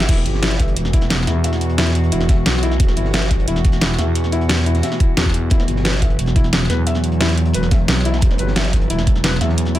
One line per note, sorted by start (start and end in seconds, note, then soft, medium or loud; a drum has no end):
0.00 9.79 B2 medium
0.00 9.79 E3 medium
0.00 snare loud
0.00 snare medium
0.00 closed hi-hat medium
0.09 0.24 E1 loud
0.09 0.18 E4 loud
0.09 5.49 F#4 medium
0.09 kick loud
0.09 closed hi-hat medium
0.09 closed hi-hat loud
0.09 crash medium
0.17 snare soft
0.25 0.75 G1 loud
0.25 closed hi-hat medium
0.35 snare medium
0.42 0.52 E4 medium
0.42 snare loud
0.42 closed hi-hat loud
0.42 closed hi-hat medium
0.51 snare medium
0.51 closed hi-hat soft
0.59 0.65 E5 medium
0.59 kick medium
0.59 snare soft
0.59 closed hi-hat medium
0.68 closed hi-hat soft
0.76 1.26 E1 loud
0.76 closed hi-hat medium
0.76 closed hi-hat loud
0.85 snare soft
0.85 closed hi-hat soft
0.93 1.03 E4 loud
0.93 kick loud
0.93 closed hi-hat medium
1.01 snare soft
1.01 closed hi-hat soft
1.10 snare loud
1.10 closed hi-hat medium
1.19 snare soft
1.27 2.11 E2 loud
1.27 1.37 E4 medium
1.27 snare medium
1.27 closed hi-hat medium
1.44 1.50 E5 medium
1.44 closed hi-hat medium
1.53 snare soft
1.53 closed hi-hat soft
1.61 closed hi-hat medium
1.70 closed hi-hat soft
1.78 1.87 E4 loud
1.78 snare loud
1.78 closed hi-hat medium
1.87 closed hi-hat soft
1.95 closed hi-hat medium
2.04 closed hi-hat soft
2.12 2.45 E1 loud
2.12 2.21 E4 medium
2.12 closed hi-hat medium
2.12 closed hi-hat loud
2.20 snare soft
2.20 closed hi-hat soft
2.29 2.35 E5 medium
2.29 kick loud
2.29 snare medium
2.29 closed hi-hat medium
2.46 2.79 B1 loud
2.46 snare loud
2.46 snare medium
2.46 closed hi-hat medium
2.46 closed hi-hat loud
2.50 snare medium
2.50 closed hi-hat medium
2.55 snare loud
2.55 closed hi-hat medium
2.63 2.72 E4 loud
2.63 closed hi-hat medium
2.71 snare soft
2.80 2.95 E1 loud
2.80 kick loud
2.80 closed hi-hat medium
2.88 snare soft
2.96 3.46 G1 loud
2.96 3.06 E4 medium
2.96 closed hi-hat medium
3.05 snare soft
3.13 3.19 E5 medium
3.13 snare loud
3.13 closed hi-hat medium
3.22 snare medium
3.22 closed hi-hat soft
3.31 kick medium
3.31 snare soft
3.31 closed hi-hat medium
3.40 closed hi-hat soft
3.48 3.97 E1 loud
3.48 3.57 E4 loud
3.48 closed hi-hat medium
3.56 snare soft
3.56 closed hi-hat soft
3.65 kick loud
3.65 closed hi-hat medium
3.72 snare soft
3.72 closed hi-hat soft
3.81 3.91 E4 medium
3.81 snare loud
3.81 closed hi-hat medium
3.90 snare soft
3.99 4.82 E2 medium
3.99 4.04 E5 medium
3.99 snare medium
3.99 closed hi-hat medium
4.15 closed hi-hat medium
4.24 snare soft
4.24 closed hi-hat soft
4.32 4.42 E4 loud
4.32 closed hi-hat medium
4.41 closed hi-hat soft
4.49 snare loud
4.49 closed hi-hat medium
4.58 closed hi-hat soft
4.66 4.76 E4 medium
4.66 closed hi-hat medium
4.74 snare soft
4.74 closed hi-hat soft
4.83 4.89 E5 medium
4.83 snare loud
4.83 closed hi-hat medium
4.91 snare medium
4.91 snare soft
5.00 5.10 E4 medium
5.00 kick loud
5.00 closed hi-hat medium
5.17 5.50 E2 medium
5.17 5.26 F#4 medium
5.17 snare loud
5.17 closed hi-hat medium
5.26 kick medium
5.34 closed hi-hat medium
5.50 5.67 E1 loud
5.50 9.79 F#3 medium
5.50 5.60 E4 loud
5.50 kick loud
5.50 closed hi-hat medium
5.60 snare soft
5.68 6.17 G1 loud
5.68 closed hi-hat medium
5.76 snare medium
5.85 5.94 B4 medium
5.85 snare loud
5.85 closed hi-hat medium
5.93 snare medium
5.93 closed hi-hat soft
6.02 6.08 E5 medium
6.02 kick medium
6.02 snare soft
6.02 closed hi-hat medium
6.10 closed hi-hat soft
6.19 6.68 E1 loud
6.19 closed hi-hat medium
6.26 snare soft
6.26 closed hi-hat soft
6.36 6.45 E4 loud
6.36 kick loud
6.36 closed hi-hat medium
6.44 snare soft
6.44 closed hi-hat soft
6.53 snare loud
6.53 closed hi-hat medium
6.61 snare soft
6.69 7.53 E2 medium
6.69 6.79 B4 medium
6.69 snare medium
6.69 closed hi-hat medium
6.87 6.92 E5 medium
6.87 closed hi-hat medium
6.95 snare soft
6.95 closed hi-hat soft
7.04 closed hi-hat medium
7.12 closed hi-hat soft
7.20 7.30 E4 loud
7.20 snare loud
7.20 closed hi-hat medium
7.29 closed hi-hat soft
7.37 closed hi-hat medium
7.45 closed hi-hat soft
7.53 7.87 E1 loud
7.53 7.64 B4 medium
7.53 closed hi-hat medium
7.63 snare soft
7.63 closed hi-hat soft
7.71 7.77 E5 medium
7.71 kick loud
7.71 snare medium
7.71 closed hi-hat medium
7.88 8.21 B1 loud
7.88 snare medium
7.88 snare loud
7.88 closed hi-hat medium
7.92 snare loud
7.92 closed hi-hat medium
7.96 snare loud
7.96 closed hi-hat medium
8.05 8.15 E4 loud
8.05 closed hi-hat medium
8.14 snare soft
8.21 8.38 E1 loud
8.21 kick loud
8.21 closed hi-hat medium
8.21 closed hi-hat loud
8.31 snare soft
8.38 8.89 G1 loud
8.38 8.48 B4 medium
8.38 closed hi-hat medium
8.47 snare medium
8.56 8.62 E5 medium
8.56 snare loud
8.56 closed hi-hat medium
8.56 closed hi-hat loud
8.65 snare medium
8.65 closed hi-hat soft
8.73 kick medium
8.73 snare soft
8.73 closed hi-hat medium
8.82 closed hi-hat soft
8.90 9.40 E1 loud
8.90 8.99 E4 loud
8.90 closed hi-hat medium
8.98 snare soft
8.98 closed hi-hat soft
9.07 kick loud
9.07 closed hi-hat medium
9.15 snare soft
9.24 9.33 B4 medium
9.24 snare loud
9.24 closed hi-hat loud
9.24 closed hi-hat medium
9.33 closed hi-hat medium
9.41 9.79 E2 loud
9.41 9.46 E5 medium
9.41 snare medium
9.41 closed hi-hat medium
9.49 snare soft
9.57 closed hi-hat medium
9.57 closed hi-hat loud
9.65 snare soft
9.65 closed hi-hat soft
9.75 9.79 E4 loud
9.75 closed hi-hat medium